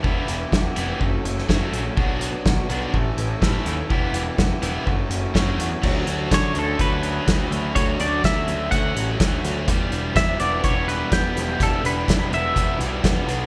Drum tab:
CC |----------------|----------------|----------------|x---------------|
HH |--x---x---x---x-|--x---x---x---x-|--x---x---x---x-|--x-x-x-x-x-x-x-|
SD |----o------oo---|----o-------o---|----o-------o---|----o-------o---|
BD |o---o---o---o---|o---o---o---o---|o---o---o---o---|o---o---o---o---|

CC |----------------|----------------|----------------|
HH |x-x-x-x-x-x-x-x-|x-x-x-x-x-x-x-x-|x-x-x-x-x-x-x-x-|
SD |----o-------o-o-|----o-------o-o-|----o-------o-o-|
BD |o---o---o---o---|o---o---o---o---|o---o---o---o---|